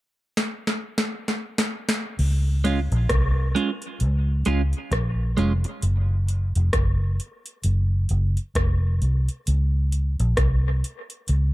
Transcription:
0.37 snare
0.67 snare
0.98 snare
1.28 snare
1.58 snare
1.89 snare
2.19 C#2, crash
2.64 G#3 C#4 F4, closed hi-hat
2.92 A#1, closed hi-hat
3.09 C2, kick, cross-stick, closed hi-hat
3.55 G#3 C#4 F4, closed hi-hat
3.82 closed hi-hat
4.00 C#2, closed hi-hat
4.45 C#2 G#3 C#4 F4, closed hi-hat
4.73 closed hi-hat
4.92 A#1, kick, cross-stick, closed hi-hat
5.37 F1 G#3 C#4 F4, closed hi-hat
5.64 muted clean electric guitar stroke, closed hi-hat
5.82 F#1, closed hi-hat
6.28 closed hi-hat
6.55 F1, closed hi-hat
6.73 F#1, kick, cross-stick, closed hi-hat
7.20 closed hi-hat
7.46 closed hi-hat
7.64 F#1, closed hi-hat
8.09 F#1, closed hi-hat
8.37 closed hi-hat
8.55 F1, kick, cross-stick, closed hi-hat
9.02 C2, closed hi-hat
9.28 closed hi-hat
9.47 C#2, closed hi-hat
9.92 closed hi-hat
10.20 A#1, closed hi-hat
10.37 C2, kick, cross-stick, closed hi-hat
10.84 closed hi-hat
11.10 closed hi-hat
11.28 C#2, closed hi-hat

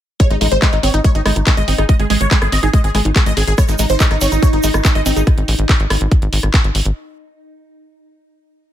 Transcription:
0.20 G#3 C#5, kick, closed hi-hat
0.30 G#1 G#3 D#4, closed hi-hat
0.41 A1 G#3 D#4, open hi-hat
0.52 G#1 G#3 C5, closed hi-hat
0.62 G#3 D#4, kick, cross-stick, clap, closed hi-hat
0.73 G#1 D#4, closed hi-hat
0.83 G#1 C4 C#5, open hi-hat
0.94 G#1 D#4, closed hi-hat
1.04 G#3 C#5, kick, closed hi-hat
1.15 G#1 D#4, closed hi-hat
1.26 G#1 G#3 D#4, cross-stick, open hi-hat
1.36 G#1 D#4, closed hi-hat
1.47 G#3 D#4, kick, clap, closed hi-hat
1.57 G#1 G#3 D#5, closed hi-hat
1.68 G#1 C4 D#4, open hi-hat
1.78 G#1 D#4 G#4, cross-stick, closed hi-hat
1.89 G#3 D#5, kick, closed hi-hat
2.00 G#1 G#3 G#4, closed hi-hat
2.10 A1 G#3 G#4, open hi-hat
2.21 G#1 G#3 C#5, closed hi-hat
2.31 G#3 G#4, kick, clap, closed hi-hat
2.42 G#1 G#4, cross-stick, closed hi-hat
2.52 G#1 C4 D#5, open hi-hat
2.63 G#1 D#4 G#4, closed hi-hat
2.73 G#3 D#5, kick, closed hi-hat
2.84 G#1 G#4, closed hi-hat
2.95 G#1 G#3 G#4, cross-stick, open hi-hat
3.05 G#1 D#4, closed hi-hat
3.16 G#3 G#4, kick, clap, closed hi-hat
3.26 G#1 G#3 D#5, closed hi-hat
3.37 G#1 C4 G#4, open hi-hat
3.47 G#1 G#4, closed hi-hat
3.58 G#3 D#4 C#5, kick, cross-stick, closed hi-hat, shaker
3.68 G#1 G#3 D#4, closed hi-hat, shaker
3.79 A1 G#3 D#4, open hi-hat, shaker
3.89 G#1 G#3 C5, closed hi-hat, shaker
4.00 G#3 D#4, kick, clap, closed hi-hat, shaker
4.11 G#1 D#4, cross-stick, closed hi-hat
4.21 G#1 C4 C#5, open hi-hat, shaker
4.32 G#1 D#4, closed hi-hat, shaker
4.42 G#3 C#5, kick, closed hi-hat, shaker
4.53 G#1 D#4, closed hi-hat
4.63 G#1 G#3 D#4, open hi-hat, shaker
4.74 G#1 D#4, cross-stick, closed hi-hat, shaker
4.85 G#3 D#4, kick, clap, closed hi-hat, shaker
4.95 G#1 G#3 D#5, closed hi-hat
5.06 G#1 C4 D#4, open hi-hat, shaker
5.16 G#1 D#4 G#4, closed hi-hat, shaker
5.27 kick, cross-stick, closed hi-hat
5.38 G#1, closed hi-hat
5.48 A1, open hi-hat
5.59 G#1, closed hi-hat
5.69 kick, clap, closed hi-hat
5.80 G#1, closed hi-hat
5.90 G#1, cross-stick, open hi-hat
6.01 G#1, closed hi-hat
6.11 kick, closed hi-hat
6.22 G#1, closed hi-hat
6.33 G#1, open hi-hat
6.43 G#1, cross-stick, closed hi-hat
6.54 kick, clap, closed hi-hat
6.64 G#1, closed hi-hat
6.75 G#1, open hi-hat
6.85 G#1, closed hi-hat

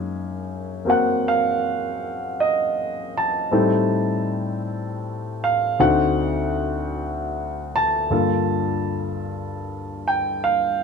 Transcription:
Already playing: F#2 F#3 G#3 A#3 D#4 G#5
0.85 A#3 C4 F#4 A#4
0.90 F#5
1.28 F5
2.40 D#5
3.17 A5
3.51 A2 G3 C4 D#4 A4
5.44 F5
5.79 D2 D3 C4 D#4 F#4 F#5
7.76 A5
8.10 G2 D3 A#3 F4 A4
10.08 G5
10.44 F5

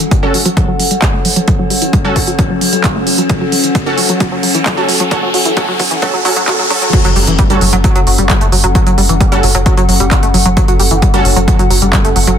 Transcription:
Already playing: F#3 C#4 A4 F#5, riser
0.00 closed hi-hat
0.11 G3, kick, closed hi-hat
0.23 G3 C#4 F#4 A4
0.34 F#3, open hi-hat
0.46 F#3, closed hi-hat
0.57 F#3, kick, closed hi-hat
0.68 F#3
0.80 F#3, open hi-hat
0.91 G3, closed hi-hat
1.02 G3, kick, clap, closed hi-hat
1.14 A3
1.25 F#3, open hi-hat
1.36 F#3, closed hi-hat
1.48 F#3, kick, closed hi-hat
1.59 F#3
1.70 G3, open hi-hat
1.82 E3, closed hi-hat
1.93 G3, kick, closed hi-hat
2.04 G3 C#4 F#4 A4
2.16 F#3, kick, open hi-hat
2.27 F#3, closed hi-hat
2.39 F#3, kick, closed hi-hat
2.50 F#3
2.61 F#3, open hi-hat
2.73 G3, closed hi-hat
2.84 G3, kick, clap, closed hi-hat
2.95 A3
3.07 F#3, open hi-hat
3.18 F#3, closed hi-hat
3.29 F#3, kick, closed hi-hat
3.41 F#3
3.52 F#3, open hi-hat
3.64 E3, closed hi-hat
3.75 F#3, kick, closed hi-hat
3.86 F#3 C#4 F#4 A4
3.98 F#3, open hi-hat
4.09 F#3, closed hi-hat
4.20 F#3, kick, closed hi-hat
4.32 F#3
4.43 F#3, open hi-hat
4.55 E3, closed hi-hat
4.66 F#3, kick, clap, closed hi-hat
4.77 F#3 C#4 F#4 A4
4.89 F#3, open hi-hat
5.00 F#3, closed hi-hat
5.11 F#3 C#4 F#4 A4, kick, closed hi-hat
5.23 F#3
5.34 F#3, open hi-hat
5.45 E3, closed hi-hat
5.57 F#3 C#4 F#4 A4, kick, closed hi-hat
5.68 F#3
5.79 F#3, kick, open hi-hat
5.91 E3, closed hi-hat
6.02 F#3 C#4 F#4 A4, kick, closed hi-hat
6.14 F#3
6.25 F#3 C#4 F#4 A4, open hi-hat
6.36 F#3, closed hi-hat
6.48 F#3 C#4 F#4 A4, kick, clap, closed hi-hat
6.59 F#3
6.70 F#3 C#4 F#4 A4, open hi-hat
6.82 F#3, closed hi-hat
6.93 F#3 C#4, kick, closed hi-hat, crash, impact
7.05 F#1 F#3, closed hi-hat
7.16 F#1 G3, open hi-hat
7.26 F#1 E3 A4, closed hi-hat
7.39 G3, kick, closed hi-hat
7.50 F#1 G3 C#4 F#4 A4, closed hi-hat
7.54 F#5
7.61 F#1 F#3, open hi-hat
7.73 F#1 F#3, closed hi-hat
7.84 F#3, kick, closed hi-hat
7.96 F#1 F#3, closed hi-hat
8.07 F#1 F#3, open hi-hat
8.18 F#1 G3, closed hi-hat
8.30 G3, kick, clap, closed hi-hat
8.41 F#1 A3, closed hi-hat
8.52 F#1 F#3, open hi-hat
8.64 F#1 F#3, closed hi-hat
8.75 F#3, kick, closed hi-hat
8.86 F#1 F#3, closed hi-hat
8.98 F#1 G3, open hi-hat
9.09 F#1 E3, closed hi-hat
9.21 G3, kick, closed hi-hat
9.32 F#1 G3 C#4 F#4 A4, closed hi-hat
9.43 F#1 F#3, open hi-hat
9.55 F#1 F#3, closed hi-hat
9.66 F#3, kick, closed hi-hat
9.77 F#1 F#3, closed hi-hat
9.89 F#1 F#3, open hi-hat
10.00 F#1 G3, closed hi-hat
10.11 G3, kick, clap, closed hi-hat
10.23 F#1 A3, closed hi-hat
10.34 F#1 F#3, open hi-hat
10.46 F#1 F#3, closed hi-hat
10.57 F#3, kick, closed hi-hat
10.68 F#1 F#3, closed hi-hat
10.79 F#1 G3, open hi-hat
10.91 F#1 E3, closed hi-hat
11.02 G3, kick, closed hi-hat
11.14 F#1 G3 C#4 F#4 A4, closed hi-hat
11.25 F#1 F#3, open hi-hat
11.36 F#1 F#3, closed hi-hat
11.48 F#3, kick, closed hi-hat
11.59 F#1 F#3, closed hi-hat
11.70 F#1 F#3, open hi-hat
11.82 F#1 G3, closed hi-hat
11.93 G3, kick, clap, closed hi-hat
12.04 F#1 A3, closed hi-hat
12.16 F#1 F#3, open hi-hat
12.27 F#1 F#3, closed hi-hat

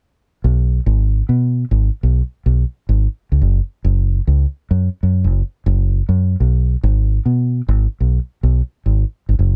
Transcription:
0.44 B1
0.86 G#1
1.29 B2
1.71 G#1
2.03 B1
2.46 B1
2.89 G#1
3.32 C#2
3.42 F#1
3.84 F#1
4.27 C#2
4.71 F#2
5.03 F#2
5.24 F#1
5.66 F#1
6.09 F#2
6.40 B1
6.83 G#1
7.26 B2
7.68 G#1
8.00 B1
8.43 B1
8.86 G#1
9.29 G#1
9.39 F#1

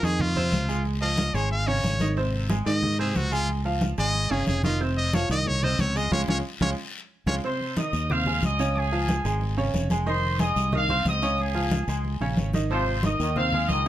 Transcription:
0.03 F2 D#3 D#4 G#4 D#5, high conga, short guiro
0.20 F4, high conga, low conga, long guiro
0.36 C3 C4 C5, high conga, low conga
0.52 C#2, high conga, short guiro
0.69 G#3 G#4 G#5, high conga, short guiro
0.85 high conga, long guiro
1.02 F3 F4 D#5 F5, high conga
1.18 high conga, short guiro
1.34 G#1 G#3 G#4 C#5 G#5, high conga, short guiro
1.51 F5, high conga, long guiro
1.67 C#3 C#4 C#5, high conga
1.84 G#1, high conga, short guiro
2.00 D#3 D#4 D#5, high conga, short guiro
2.17 C3 C4 C5, high conga, long guiro
2.33 high conga
2.50 G#3 G#4 G#5, high conga, short guiro
2.66 G#2 D#3 D#4 D#5, high conga, short guiro
2.83 high conga, low conga, long guiro
2.99 C3 C4 G#4 C5, high conga
3.15 C#2 F#4, high conga, short guiro
3.32 G#3 F4 G#4 G#5, high conga, short guiro
3.49 high conga, long guiro
3.65 F3 F4 F5, high conga
3.81 high conga, short guiro
3.98 G#1 G#3 G#4 D#5 G#5, high conga, short guiro
4.14 high conga, long guiro
4.30 G1 C#3 C#4 G#4 C#5, high conga
4.47 F1 G#4, high conga, short guiro
4.64 D#3 D#4 F4 D#5, high conga, short guiro
4.81 C3 C4 C5, high conga, long guiro
4.97 D#5, high conga
5.13 F3 F4 C#5 F5, high conga, short guiro
5.29 C2 D#3 D#4 D#5, high conga, short guiro
5.46 C#5, high conga, low conga, long guiro
5.63 C3 C4 C5 D#5, high conga, low conga
5.79 C#2 C#5, high conga, short guiro
5.96 G#3 G#4 D#5 G#5, high conga, short guiro
6.11 C#2 G#3 C#4 F4 C#5, high conga, long guiro
6.28 C#2 G#3 C#4 F4 C#5, high conga, long guiro
6.61 C#2 G#3 C#4 F4 C#5, high conga, long guiro
7.26 C#2 G#3 C#4 F4 C#5, high conga, long guiro
7.43 C3 C4 C5 C6, high conga, long guiro
7.60 high conga
7.77 D#3 D#4 D#5 D#6, high conga, short guiro
7.93 D#2, high conga, short guiro
8.10 C3 C4 C5 F5, high conga, low conga, long guiro
8.26 G#3 G#4 G#5, high conga, low conga
8.42 C#2 D#5 D#6, high conga, short guiro
8.59 C#3 C#4 C#5, high conga, short guiro
8.76 G#4 G#5, high conga, long guiro
8.92 F3 F4 F5, high conga
9.08 high conga, short guiro
9.25 G#1 G#3 G#4 G#5, high conga, short guiro
9.41 high conga, long guiro
9.57 C#3 C#4 C#5, high conga
9.74 F1, high conga, short guiro
9.90 G#3 G#4 G#5, high conga, short guiro
10.06 D#3 D#4 C5 D#5 C6, high conga, long guiro
10.23 high conga
10.39 G#3 G#4 D#5 G#5 D#6, high conga, short guiro
10.56 C2, high conga, short guiro
10.73 D#3 D#4 D#5 F5, high conga, low conga, long guiro
10.89 C4 C5 C6, high conga, low conga
11.05 C#2 D#5 D#6, high conga, short guiro
11.22 C#3 C#4 C#5, high conga, short guiro
11.38 G#4 G#5, high conga, long guiro
11.55 F3 F4 F5, high conga
11.71 high conga, short guiro
11.88 C#2 G#3 G#4 G#5, high conga, short guiro
12.04 high conga, long guiro
12.20 A#1 C#3 C#4 C#5, high conga
12.37 G#1, high conga, short guiro
12.53 D#3 D#4 D#5, high conga, short guiro
12.70 C3 F3 C4 C5 C6, high conga, long guiro
12.87 high conga
13.03 D#3 D#4 D#5 D#6, high conga, short guiro
13.20 D#2 D#3, high conga, short guiro
13.36 C3 C4 C5 F5, high conga, low conga, long guiro
13.52 G#3 G#4 G#5, high conga, low conga
13.68 C#2 D#3 D#5 D#6, high conga, short guiro

